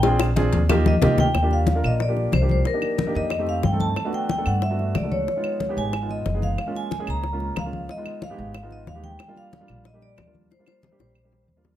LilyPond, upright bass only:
\new Staff \with { instrumentName = "Upright bass" } { \clef bass \time 4/4 \key ees \major \tempo 4 = 183 bes,,4. ees,4. ees,4 | ees,4. bes,,4. c,4 | r4. f,4. g,4 | r4. g,4. des,4 |
r4. aes,,4. ges,,4 | r4. des,4. des,4 | r4. aes,,4. ees,4 | r4. bes,,4. ees,4 |
r4. bes,,4. ees,4 | }